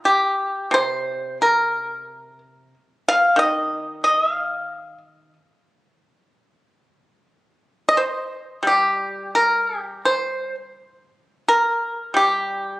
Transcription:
pipa
0.05 G4
0.71 C3 C5
1.42 A#4
3.08 F5
3.36 D#3 D#5
4.04 D#5
4.21 E5
4.32 F5
7.89 D#5
7.97 C5
8.63 G3
8.67 G4
9.35 A#4
9.79 G4
10.05 C5
11.48 A#4
12.14 G3 G4

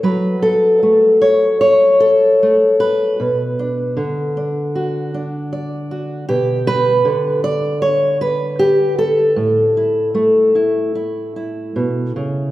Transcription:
steel-string acoustic guitar
0.03 F#3 B4
0.42 A4
0.83 A3
1.22 C#5
1.61 C#5
2.00 A4
2.43 A3
2.80 B4
3.20 B2
3.59 D4
3.97 D3
4.37 D4
4.75 F#4
5.14 D4
5.53 D5
5.91 F#4
6.29 B2 G4
6.67 B4
7.05 D3
7.44 D5
7.82 C#5
8.21 B4
8.59 G4
8.99 A4
9.36 A2
9.77 E4
10.15 A3
10.55 E4
10.95 E4
11.36 E4
11.76 B2
12.16 C#3

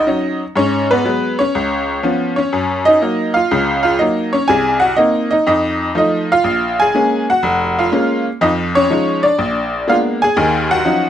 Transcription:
honky-tonk piano
Already playing: D#5
0.07 F#3 C#4 D#4
0.56 G#2 C#4 C#5
0.91 B3 B4
1.04 F#3 G#3 B3
1.39 C#4 C#5
1.55 C#2
2.03 F3 B3 C#4
2.36 C#4 C#5
2.53 F#2
2.85 D#4 D#5
3.01 F#3 A#3 D#4
3.34 F4 F5
3.51 C#2 C#3
3.83 F4 F5
3.99 F#3 A#3 D#4 D#5
4.33 C#4 C#5
4.48 C2 C3 G#4 G#5
4.80 F#4 F#5
4.96 A#3 C4 D#4 D#5
5.31 D#4 D#5
5.47 F2 D#4 D#5
5.95 F3 A3 D#4 D#5
6.32 F4 F5
6.44 A#1
6.80 G#4 G#5
6.95 G#3 A#3 C#4
7.30 F#4 F#5
7.43 F1
7.79 F4 F5
7.92 G#3 A#3 C#4
8.41 F2 F3 D#4 D#5
8.75 C#4 C#5
8.90 F3 G#3 D#4
9.23 D4 D5
9.39 A#1
9.87 G#3 A#3 B3 D4 F5
9.92 F4
10.22 G#4 G#5
10.36 D#2 D#3
10.71 F#4 F#5
10.85 F3 F#3 C#4 D#4

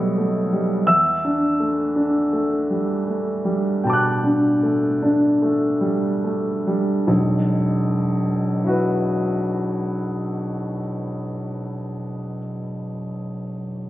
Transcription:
grand piano
Already playing: B1 G3 A3 B3 D#5 D#6
0.18 A3
0.52 G3
0.87 E2 E5 E6
1.25 D4
1.60 A3
1.96 D4
2.33 A3
2.70 G3
3.07 A3
3.45 G3
3.84 B2 G5 A5
3.90 D6 F#6
4.24 D4
4.63 A3
5.02 D4
5.42 A3
5.81 G3
6.24 A3
6.67 G3
7.07 E1 B1
8.64 E4 F#4
8.69 B4

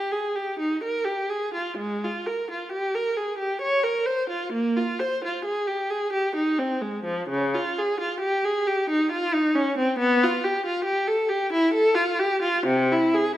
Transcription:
viola
Already playing: G4
0.12 G#4
0.36 G4
0.59 D#4
0.84 A#4
1.05 G4
1.30 G#4
1.54 F4
1.77 G#3
2.04 F4
2.27 A#4
2.51 F4
2.72 G4
2.94 A#4
3.17 G#4
3.38 G4
3.61 C#5
3.84 A#4
4.06 C5
4.29 F4
4.53 A#3
4.77 F4
4.99 C5
5.24 F4
5.45 G#4
5.67 G4
5.90 G#4
6.13 G4
6.35 D#4
6.58 C4
6.81 G#3
7.04 F3
7.29 C#3
7.54 F4
7.79 G#4
8.00 F4
8.20 G4
8.45 G#4
8.67 G4
8.90 D#4
9.12 F4
9.34 D#4
9.55 C#4
9.78 C4
9.99 B3
10.23 F4
10.44 G4
10.66 F4
10.85 G4
11.08 A4
11.29 G4
11.53 E4
11.74 A4
11.95 F4
12.19 G4
12.42 F4
12.66 C3
12.92 E4
13.14 G#4

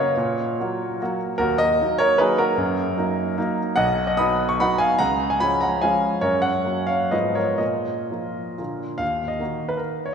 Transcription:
grand piano
Already playing: C#3 A#3 F#4 A#4 C#5
0.17 A#2
0.60 F#3 A#3 F#4
1.01 F#3 A#3 F#4
1.38 D#2 F#4 A#4
1.58 A#4 D#5
1.80 F#3 A#3 D#4
1.98 A#4 C#5
2.18 F#3 A#3 D#4 G#4 B4
2.38 F#4 A#4
2.58 F#2
2.97 F#3 A#3 D#4
3.37 F#3 A#3 D#4
3.76 B1 D#5 F#5
4.07 D#5
4.17 F#3 B3 D#4 B5 D#6
4.49 C#6
4.60 F#3 B3 D#4 F#5 B5
4.78 F5 G#5
4.99 C#2 F#5 A#5
5.30 G#5
5.40 F3 G#3 C#4 G#5 B5
5.61 F#5 A#5
5.82 F3 G#3 C#4 F5 G#5
6.21 F#2 A#4 C#5
6.42 C#5 F#5
6.65 F#3 A#3 C#4
6.87 C#5 F5
7.11 G#2 F3 B3 F4 B4 D#5
7.35 A#4 C#5
7.58 A#2 A#4 D#5
8.11 F3 A#3 F4
8.58 A#2 D3 A#3 F4
8.98 D#2 F5
9.28 D#5
9.39 D#3 A#3 F#4
9.69 B4
9.77 A#4
10.06 C#5

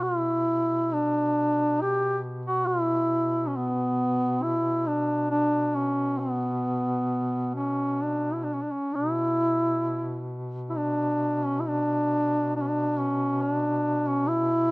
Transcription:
duduk
Already playing: B2
0.03 E4
0.93 D4
1.81 G4
2.46 F#4
2.67 E4
3.47 C#4
3.57 B3
4.43 E4
4.87 D4
5.30 D4
5.75 C#4
6.19 B3
7.55 C#4
8.02 D4
8.33 E4
8.44 D4
8.53 C#4
8.62 D4
8.71 C#4
8.93 B2 E4
10.70 E4
10.76 D4
11.45 C#4
11.60 E4
11.68 D4
12.56 D4
12.61 C#4
12.68 D4
12.99 C#4
13.41 D4
14.08 C#4
14.28 E4

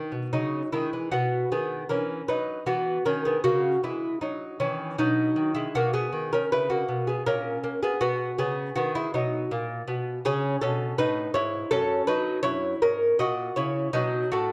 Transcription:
lute
Already playing: D#3 D#4
0.12 B2
0.33 C#3 F#3 D#4
0.72 D#3 G#3 E4
0.93 E3
1.11 B2 B3 F#4
1.52 D#3 B3 G#4
1.89 E3 C#4 A#4
2.28 F#3 D#4 B4
2.66 E3 B3 F#4
3.05 D#3 C#4 A#4
3.25 B3 G#4
3.44 C#3 A#3 F#4
3.83 E3 G#3 E4
4.21 F#3 D#4
4.60 D#3 E3 C#4
4.98 B2 F#3 D#4
5.36 D#3
5.55 G#3 E4
5.75 B2 A#3 F#4
5.93 B3 G#4
6.13 D#3
6.33 C#4 A#4
6.52 C#3 E4 B4
6.70 A#3 F#4
6.88 B2
7.07 B3 G#4
7.26 A#2 C#4 A#4
7.64 A#3
7.83 B3 G#4
8.01 B2 B3 F#4
8.38 C#3 B3 G#4
8.76 D#3 B3 F#4
8.95 G#3 E4
9.14 B2 F#3 D#4
9.51 A#2
9.88 B2
10.25 C#3 C#4 G#4
10.61 B2 C#4 A4
10.98 A2 D#4 B4
11.34 G#2 E4 C#5
11.71 F#2 C#4 A4
12.07 F#3 D#4 B4
12.43 F#2 E4 C#5
12.82 G#2 C#4 A#4
13.19 A#2 F#4 D#5
13.56 C#3 E4 C#5
13.93 B2 F#3 D#4
14.32 A2 A3 F#4

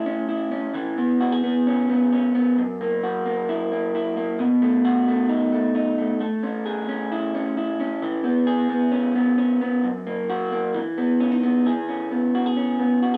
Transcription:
clean electric guitar
Already playing: A3 E4 G#4
0.06 C#4
0.29 E4
0.52 C#4
0.74 E3
0.98 B3
1.21 F#4
1.32 G#4
1.44 B3
1.67 C#4
1.90 B3
2.13 C#4
2.35 B3
2.58 F#2
2.81 A#3
3.03 F#4
3.26 A#3
3.49 E4
3.71 A#3
3.95 E4
4.17 A#3
4.39 B2
4.62 A3
4.85 F#4
5.08 A3
5.29 D#4
5.53 A3
5.75 D#4
5.98 A3
6.21 A3
6.43 C#4
6.66 G#4
6.88 C#4
7.12 E4
7.35 C#4
7.57 E4
7.80 C#4
8.02 E3
8.24 B3
8.47 G#4
8.70 B3
8.92 C#4
9.15 B3
9.38 C#4
9.61 B3
9.84 F#2
10.07 A#3
10.30 F#4
10.52 A#3
10.74 E3
10.98 B3
11.20 C#4
11.32 D#4
11.43 B3
11.66 E3 G#4
11.89 C#4
12.11 B3
12.35 F#4
12.46 G#4
12.57 C#4
12.80 B3
13.03 F#4
13.14 G#4

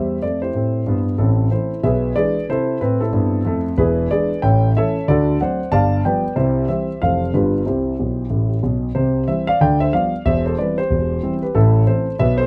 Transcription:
grand piano
Already playing: E2 G3 G4 C5 E5
0.22 F2 A3 D5
0.42 E4 G4 C5
0.54 A2 C4
0.87 G2 B3
1.18 A1 A2 C4 E4 A4
1.51 E3 A3 C4 E4 A4 C5
1.83 B1 B2 G#4 B4 E5
2.16 E3 G#3 D4 G#4 B4 D5
2.49 C3 E4 A4 C5
2.81 A2 C4 B4
3.01 C4 E4 A4
3.13 G2 B3
3.45 F2 A3
3.77 E1 E2 E4 G#4 B4
4.11 E3 G#3 D4 G#4 B4 D5
4.42 A1 A2 C#5 E5 G5
4.77 E3 A3 C#4 A4 C#5 E5
5.08 D2 D3 F#4 A4 D5
5.41 F#3 A3 C4 C5 D5 F#5
5.71 G1 G2 D5 F5 A5
6.05 F3 G3 B3 B4 D5 G5
6.36 C2 C3 E4 G4 C5
6.68 E3 G3 C4 G4 C5 E5
7.02 F1 F2 E3 A3 C4 A4 C5 F5
7.34 G1 G2 D3 G3 F4 G4 B4
7.66 C2 C3 E4 G4 C5
8.00 B1 B2
8.30 A1 A2
8.63 B1 B2
8.95 C2 C3 G4 C5
9.27 E3 G3 C4 C5 E5
9.47 D5 F5
9.61 D2 D3 D5 G5
9.80 C5 E5
9.93 F3 G3 B3 D5 F5
10.25 E1 E2 C5 E5
10.46 A4 C5
10.58 E3 G3 C4 B4 D5
10.78 G4 C5
10.90 E1 E2
11.23 E3 G3 C4
11.43 G4 B4
11.55 A1 A2 E4 A4
11.87 E3 A3 C4 A4 C5
12.19 B1 B2 B4 E5
12.38 A4 C5

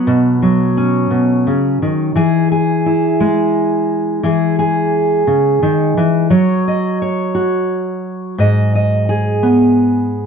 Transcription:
steel-string acoustic guitar
Already playing: F#3 B3
0.07 B2
0.42 F#3
0.77 C#4
1.11 B2
1.47 C#3
1.82 D#3
2.15 E3 G#4
2.52 G#4
2.86 E4
3.20 G#3
4.23 E3 G#4
4.59 G#4
5.27 C#3
5.63 D#3
5.97 E3
6.30 F#3 C#5
6.68 D#5
7.02 C#5
7.35 F#4
8.38 G#2 D#5
8.75 D#5
9.09 G#4
9.43 B3

